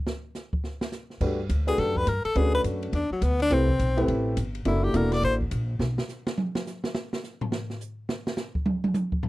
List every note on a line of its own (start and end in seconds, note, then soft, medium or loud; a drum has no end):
0.07 snare medium
0.35 snare soft
0.35 hi-hat pedal medium
0.53 kick medium
0.64 snare soft
0.81 snare loud
0.92 snare medium
0.92 hi-hat pedal medium
1.10 snare soft
1.21 1.49 G2 medium
1.21 1.37 A3 medium
1.21 1.37 D4 medium
1.21 1.37 F#4 medium
1.21 1.37 G4 medium
1.21 1.37 B4 medium
1.21 kick medium
1.21 crash medium
1.49 1.77 D2 medium
1.49 kick soft
1.49 hi-hat pedal medium
1.49 ride medium
1.67 2.05 A3 medium
1.67 2.05 D4 medium
1.67 2.05 F#4 medium
1.67 2.05 G4 medium
1.67 1.81 G#4 loud
1.67 2.05 B4 medium
1.67 ride soft
1.78 2.06 F#2 medium
1.78 1.99 A4 medium
1.78 kick soft
1.78 snare soft
1.78 ride medium
1.96 2.10 B4 loud
1.96 kick medium
2.07 2.24 G2 medium
2.07 2.24 A#4 medium
2.07 kick soft
2.07 hi-hat pedal medium
2.07 ride medium
2.25 2.39 A4 loud
2.25 muted upright bass stroke soft
2.25 ride soft
2.35 2.64 D2 medium
2.35 2.93 A3 medium
2.35 2.93 C#4 medium
2.35 2.93 D4 medium
2.35 2.93 F#4 medium
2.35 2.54 G#4 medium
2.35 2.93 B4 medium
2.35 kick soft
2.35 ride medium
2.55 2.61 B4 loud
2.64 2.92 F#2 medium
2.64 kick soft
2.64 hi-hat pedal medium
2.64 ride medium
2.83 ride medium
2.93 3.10 E2 medium
2.93 3.11 D4 medium
2.93 kick soft
2.93 ride medium
3.11 3.25 F#3 medium
3.11 muted upright bass stroke soft
3.22 3.50 D2 medium
3.22 3.40 B3 loud
3.22 kick soft
3.22 hi-hat pedal medium
3.22 ride medium
3.40 3.54 D4 loud
3.40 ride soft
3.50 3.78 C2 medium
3.50 3.67 A3 medium
3.50 3.67 C4 medium
3.50 4.09 C4 loud
3.50 3.67 E4 medium
3.50 3.67 G4 medium
3.50 3.67 B4 medium
3.50 kick soft
3.50 ride medium
3.69 kick medium
3.79 4.07 B1 medium
3.79 hi-hat pedal medium
3.79 ride medium
3.97 4.34 A3 medium
3.97 4.34 C4 medium
3.97 4.34 E4 medium
3.97 4.35 G4 medium
3.97 4.35 B4 medium
3.97 ride soft
4.08 4.36 A1 medium
4.08 kick soft
4.08 ride medium
4.37 4.64 G1 medium
4.37 kick soft
4.37 hi-hat pedal medium
4.37 ride medium
4.55 ride medium
4.65 4.93 F#1 medium
4.65 4.92 A#3 medium
4.65 4.93 D4 medium
4.65 4.93 E4 medium
4.65 4.85 E4 medium
4.65 4.93 F#4 medium
4.65 4.93 A4 medium
4.65 kick soft
4.65 ride medium
4.84 4.98 G4 medium
4.94 5.22 E1 medium
4.94 5.37 A#3 medium
4.94 5.37 D4 medium
4.94 5.37 E4 medium
4.94 5.37 F#4 medium
4.94 5.37 A4 medium
4.94 5.14 A#4 medium
4.94 kick soft
4.94 hi-hat pedal medium
4.94 ride medium
5.12 5.23 D5 loud
5.12 snare medium
5.12 ride soft
5.23 5.50 A1 medium
5.23 5.35 C5 loud
5.23 kick soft
5.23 ride medium
5.41 kick medium
5.51 5.79 A#1 medium
5.51 kick soft
5.51 hi-hat pedal medium
5.51 ride medium
5.79 5.97 B1 medium
5.79 snare loud
5.98 snare medium
6.09 snare soft
6.09 hi-hat pedal medium
6.27 snare loud
6.38 high tom medium
6.55 snare loud
6.67 snare medium
6.67 hi-hat pedal medium
6.84 snare loud
6.95 snare medium
7.13 snare loud
7.24 snare soft
7.24 hi-hat pedal medium
7.41 floor tom loud
7.52 snare loud
7.70 snare medium
7.81 hi-hat pedal medium
8.09 snare loud
8.27 snare loud
8.37 snare loud
8.37 hi-hat pedal medium
8.55 kick medium
8.66 high tom loud
8.84 high tom loud
8.94 hi-hat pedal medium
8.94 high tom loud
9.12 kick medium
9.23 floor tom loud